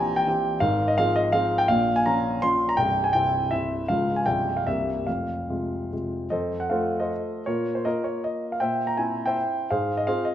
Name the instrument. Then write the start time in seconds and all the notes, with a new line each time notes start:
grand piano
Already playing: A#1 A#2 E3 C4 G4 G5 G#5 A#5
0.16 G5
0.27 E3 C4 G4
0.60 G#1 G#2 F5
0.88 D#5
0.98 F3 C4 G#4 F5
1.16 D#5
1.32 F3 C4 G#4 F5
1.58 G5
1.68 A#1 A#2 F5
1.96 G#5
2.06 F3 C#4 F4 A#5
2.42 F3 C#4 F4 C6
2.69 A#5
2.77 C1 C2 G5
3.04 G#5
3.13 C3 C4 E4 G5
3.51 C3 C4 E4 E5
3.88 C#1 C#2 F3 G#3 F4 F5
4.16 G#5
4.26 C1 C2 F3 G#3 F4 G5
4.57 F5
4.67 C1 C2 C3 A#3 G4 E5
5.07 F1 F2 F5
5.50 C3 G#3 F4
5.93 C3 G#3 F4
6.30 F2 A4 C5 D#5
6.60 F#5
6.70 A3 F4 A4 C5 F5
7.00 A4 C5 D#5
7.46 A#2 F4 A#4 C#5
7.75 C5
7.85 A#3 F4 A#4 D#5
8.04 C#5
8.24 D#5
8.52 F5
8.60 A#2 C5 E5 G5
8.87 A#5
8.97 C4 E4 G#5
9.26 C5 E5 G5
9.70 G#2 G#4 C5 F5
9.97 D#5
10.07 C4 F4 G#4 C5 F5
10.25 D#5